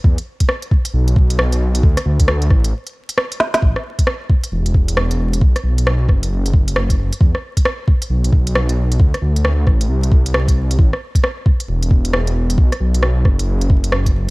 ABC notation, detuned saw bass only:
X:1
M:4/4
L:1/16
Q:"Swing 16ths" 1/4=134
K:Ador
V:1 name="Detuned saw bass" clef=bass
E,, z6 z B,,,2 B,,,6 | D,, z D,,4 A,,,2 z8 | A,,,2 z6 E,,,2 E,,,6 | B,,,2 B,,,4 F,,,8 F,,,2 |
E,,2 z6 B,,,2 B,,,6 | D,,2 D,,4 A,,,2 C,,8 | A,,,2 z6 E,,,2 E,,,6 | B,,,2 B,,,4 F,,,8 F,,,2 |]